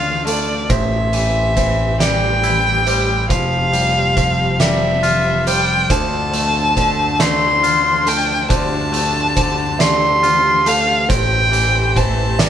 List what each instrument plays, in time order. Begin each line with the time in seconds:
Already playing: picked electric bass D2, string section D3 A3 F4 C5, clean electric guitar D3 A3 F4, felt piano D5, violin F5
0.25 clean electric guitar A3, felt piano A4, violin D5, closed hi-hat
0.70 picked electric bass A1, clean electric guitar A2, string section E3 G4 C5, felt piano C5, violin E5, kick, closed hi-hat
1.13 clean electric guitar E3, closed hi-hat
1.57 clean electric guitar E3, felt piano C5, kick, closed hi-hat
2.00 clean electric guitar G3, felt piano D5, violin G5, snare, closed hi-hat
2.44 clean electric guitar E4, closed hi-hat
2.86 clean electric guitar G3, felt piano C5, closed hi-hat
3.29 picked electric bass F1, clean electric guitar F3, string section F3 C4 C5, felt piano C5, violin F5, kick, closed hi-hat
3.73 clean electric guitar G3, closed hi-hat
4.16 clean electric guitar F3, felt piano C5, kick, closed hi-hat
4.59 clean electric guitar G3, felt piano D5, violin E5, snare, closed hi-hat
5.03 clean electric guitar F4, closed hi-hat
5.47 clean electric guitar G3, felt piano C5, violin G5, closed hi-hat
5.90 picked electric bass D2, clean electric guitar D3, string section D4 A4, felt piano C5, violin A5, kick, closed hi-hat
6.33 clean electric guitar A3, closed hi-hat
6.76 clean electric guitar D3, felt piano C5, kick, closed hi-hat
7.19 clean electric guitar A3, felt piano D5, violin C6, snare, closed hi-hat
7.63 clean electric guitar F4, closed hi-hat
8.06 clean electric guitar A3, felt piano A4, violin G5, closed hi-hat
8.49 picked electric bass D2, clean electric guitar D3, string section G4, felt piano C5, violin A5, kick, closed hi-hat
8.93 clean electric guitar A3, closed hi-hat
9.36 clean electric guitar D3, felt piano C5, kick, closed hi-hat
9.79 clean electric guitar A3, felt piano D5, violin C6, snare, closed hi-hat
10.23 clean electric guitar F4, closed hi-hat
10.66 clean electric guitar A3, felt piano A4, violin F5, closed hi-hat
11.09 picked electric bass A1, clean electric guitar A2, string section E3 A3 C5, felt piano C5, violin G5, kick, closed hi-hat
11.52 clean electric guitar E3, closed hi-hat
11.96 clean electric guitar E3, felt piano C5, violin A5, kick, closed hi-hat
12.39 clean electric guitar G3, felt piano D5, snare, closed hi-hat